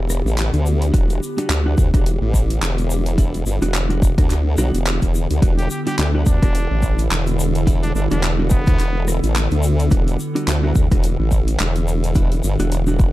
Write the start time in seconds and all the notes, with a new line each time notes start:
Already playing: E1 D3 B3 E4 G4, downlifter
0.10 cross-stick, shaker
0.25 A1, shaker
0.38 clap, closed hi-hat, shaker
0.53 D2, closed hi-hat, shaker
0.66 shaker
0.82 closed hi-hat, shaker
0.94 E1 G3 B3 D4 F#4, kick, closed hi-hat, shaker
1.10 closed hi-hat, shaker
1.23 shaker
1.38 G3 B3 D4 F#4, closed hi-hat, shaker
1.49 D2, clap, closed hi-hat, shaker
1.66 G3 B3 D4 F#4
1.78 D2, kick, shaker
1.94 E1 G3 B3 D4 F#4, kick, cross-stick, closed hi-hat, shaker
2.06 closed hi-hat, shaker
2.21 A1
2.34 kick, shaker
2.50 closed hi-hat, shaker
2.61 E1, clap, closed hi-hat, shaker
2.78 closed hi-hat, shaker
2.90 shaker
3.06 closed hi-hat, shaker
3.18 G3 B3 D4 E4, kick, closed hi-hat, shaker
3.34 closed hi-hat, shaker
3.46 G1, shaker
3.62 E1 G3 B3 D4 F#4, closed hi-hat, shaker
3.74 clap, closed hi-hat, shaker
3.90 G3 B3 D4 F#4, closed hi-hat
4.02 kick, shaker
4.18 D2 G3 B3 D4 F#4, kick, cross-stick, closed hi-hat, shaker
4.30 D2, clap, closed hi-hat, shaker
4.58 B1 G3 B3 D4 F#4, cross-stick, shaker
4.74 E1, closed hi-hat, shaker
4.86 clap, closed hi-hat, shaker
5.02 E1, kick, closed hi-hat, shaker
5.15 shaker
5.30 D2, closed hi-hat, shaker
5.42 E1 G3 B3 D4 F#4 A4, kick, closed hi-hat, shaker
5.58 G4, closed hi-hat, shaker
5.70 G4, shaker
5.87 G3 B3 D4 F#4 G4, closed hi-hat, shaker
5.98 D2 G4, clap, closed hi-hat, shaker
6.15 G3 B3 D4 F#4
6.26 D2 D4, kick, shaker
6.42 E1 G3 B3 D4 F#4, kick, cross-stick, closed hi-hat, shaker
6.55 closed hi-hat, shaker
6.71 A1
6.83 kick, shaker
6.99 closed hi-hat, shaker
7.11 E1, clap, closed hi-hat, shaker
7.27 closed hi-hat, shaker
7.39 shaker
7.55 closed hi-hat, shaker
7.67 G3 B3 D4 E4, kick, closed hi-hat, shaker
7.83 D4, closed hi-hat, shaker
7.95 G1 D4, shaker
8.11 E1 G3 B3 D4 F#4, closed hi-hat, shaker
8.23 clap, closed hi-hat, shaker
8.39 G3 B3 D4 F#4
8.50 B3, kick, shaker
8.67 D2 G3 B3 D4 F#4, kick, cross-stick, closed hi-hat, shaker
8.79 E1, clap, closed hi-hat, shaker
9.08 cross-stick, shaker
9.23 A1, closed hi-hat, shaker
9.36 clap, closed hi-hat, shaker
9.51 D2, closed hi-hat, shaker
9.63 shaker
9.80 closed hi-hat, shaker
9.91 E1 G3 B3 D4 F#4, kick, closed hi-hat, shaker
10.08 closed hi-hat, shaker
10.19 shaker
10.35 G3 B3 D4 F#4, closed hi-hat, shaker
10.48 D2, clap, closed hi-hat, shaker
10.63 G3 B3 D4 F#4
10.76 D2, kick, shaker
10.91 E1 G3 B3 D4 F#4, kick, cross-stick, closed hi-hat, shaker
11.03 closed hi-hat, shaker
11.19 A1
11.31 kick, shaker
11.48 closed hi-hat, shaker
11.60 E1, clap, closed hi-hat, shaker
11.75 closed hi-hat, shaker
11.88 shaker
12.04 closed hi-hat, shaker
12.15 G3 B3 D4 E4, kick, closed hi-hat, shaker
12.32 closed hi-hat, shaker
12.44 G1, shaker
12.59 E1 G3 B3 D4 F#4, closed hi-hat, shaker
12.72 closed hi-hat, shaker
12.87 G3 B3 D4 F#4, shaker
12.99 kick, shaker